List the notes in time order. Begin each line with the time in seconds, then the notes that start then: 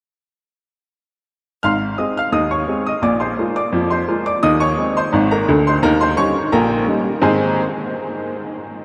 1.63 G#1 G#2 F5 C6 F6
1.98 G#3 C4 G#4 D#5 D#6
2.17 F5 F6
2.32 D#2 D#3 D#5 D#6
2.51 C#5 C#6
2.68 G#3 C4 G#4
2.87 D#5 D#6
3.02 A#1 A#2 D5 D6
3.20 C5 C6
3.38 G#3 A#3 F4
3.56 D5 D6
3.73 F2 F3
3.90 C5 C6
4.08 G#3 A#3 F4
4.26 D5 D6
4.43 D#2 D#3 D#5 D#6
4.60 C#5 C#6
4.78 G#3 C4 D#4
4.97 C5 C6
5.12 G#1 G#2
5.31 A#4 A#5
5.48 D2 D3
5.67 C5 C6
5.83 D#2 D#3 A#4 A#5
6.01 C5 C6
6.17 G3 C#4 D#4 C#5 C#6
6.52 A#1 A#2 A#4 G5 A#5
6.87 G3 C#4 D#4
7.22 G#2 D#3 C4 D#4 G#4 C5 G#5